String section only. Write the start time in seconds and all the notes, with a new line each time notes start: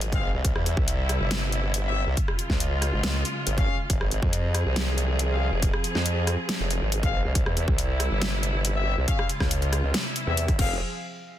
Already playing: F3 C4 G#4
0.45 C3 G3 E4
2.17 C#3 G#3 F4
3.90 F3 C4 G#4
7.35 C3 G3 E4
9.08 C#3 G#3 F4
9.94 C3 G3 E4
10.59 F3 C4 G#4